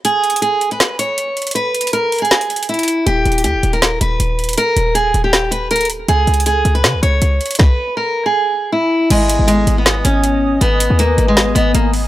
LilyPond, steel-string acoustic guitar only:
\new Staff \with { instrumentName = "Steel-string acoustic guitar" } { \time 4/4 \key gis \minor \tempo 4 = 159 gis'4 gis'8. b'8. cis''4. | b'4 ais'8. gis'4~ gis'16 e'4 | g'4 g'8. ais'8. b'4. | ais'4 gis'8. g'8. b'8 ais'8 r8 |
gis'4 gis'8. b'8. cis''4. | b'4 ais'8. gis'4~ gis'16 e'4 | gis4 gis8. b8. cis'4. | b4 ais8. gis8. b8 ais8 r8 | }